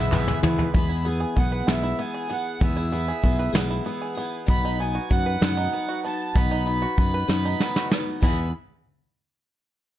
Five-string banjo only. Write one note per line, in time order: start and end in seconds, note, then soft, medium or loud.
0.00 0.12 B3 medium
0.00 0.59 E4 medium
0.00 0.28 B4 medium
0.13 0.42 B3 medium
0.28 0.58 G#4 medium
0.43 0.73 B3 medium
0.59 0.74 B4 medium
0.74 1.04 B3 medium
0.89 1.52 E4 medium
1.05 1.35 B3 medium
1.20 1.52 G#4 medium
1.36 1.66 B3 medium
1.52 2.14 B4 medium
1.67 1.98 B3 medium
1.83 2.46 E4 medium
1.99 2.29 B3 medium
2.14 2.77 G#4 medium
2.30 2.61 B3 medium
2.62 2.91 B3 medium
2.77 3.39 E4 medium
2.92 3.22 B3 medium
3.08 3.39 G#4 medium
3.23 3.54 B3 medium
3.39 4.01 B4 medium
3.55 3.85 B3 medium
3.70 4.33 E4 medium
3.86 4.16 B3 medium
4.02 4.48 G#4 medium
4.17 4.47 B3 medium
4.49 4.79 B3 medium
4.65 5.27 D#4 medium
4.80 5.10 B3 medium
4.95 5.26 F#4 medium
5.11 5.41 B3 medium
5.26 5.88 B4 medium
5.42 5.72 B3 medium
5.57 6.20 D#4 medium
5.73 6.03 B3 medium
5.89 6.51 F#4 medium
6.05 6.35 B3 medium
6.36 6.66 B3 medium
6.51 7.13 D#4 medium
6.67 6.97 B3 medium
6.82 7.14 F#4 medium
6.99 7.29 B3 medium
7.14 7.76 B4 medium
7.30 7.60 B3 medium
7.45 8.07 D#4 medium
7.61 7.90 B3 medium
7.77 8.23 F#4 medium
7.92 8.22 B3 medium
8.23 8.52 B3 medium
8.23 8.52 E4 medium
8.23 8.52 G#4 medium